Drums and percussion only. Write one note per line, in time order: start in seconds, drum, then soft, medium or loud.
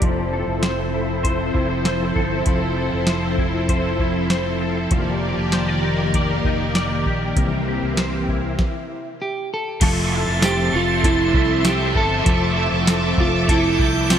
0.02 kick loud
0.02 closed hi-hat medium
0.63 snare medium
0.63 closed hi-hat soft
1.24 kick medium
1.24 closed hi-hat medium
1.55 kick medium
1.85 snare loud
1.85 closed hi-hat medium
2.16 kick medium
2.46 kick loud
2.46 closed hi-hat medium
3.07 snare loud
3.07 closed hi-hat medium
3.38 kick medium
3.69 kick medium
3.69 closed hi-hat medium
3.99 kick medium
4.30 snare medium
4.30 closed hi-hat medium
4.91 kick loud
4.91 closed hi-hat medium
5.52 snare loud
5.52 closed hi-hat medium
6.14 kick medium
6.14 closed hi-hat medium
6.45 kick medium
6.75 snare loud
6.75 closed hi-hat medium
7.06 kick medium
7.37 kick loud
7.37 closed hi-hat medium
7.97 snare loud
7.97 closed hi-hat medium
8.28 kick medium
8.59 kick loud
8.59 snare medium
9.81 kick loud
9.81 closed hi-hat medium
9.81 crash loud
10.42 snare loud
10.42 closed hi-hat medium
10.42 tambourine medium
11.04 kick loud
11.04 closed hi-hat medium
11.34 kick loud
11.65 snare loud
11.65 closed hi-hat medium
11.65 tambourine medium
11.95 kick medium
12.26 kick loud
12.26 closed hi-hat medium
12.87 snare loud
12.87 closed hi-hat medium
12.87 tambourine medium
13.18 kick medium
13.49 kick loud
13.49 closed hi-hat medium
13.79 kick loud
14.10 snare loud
14.10 closed hi-hat medium
14.10 tambourine medium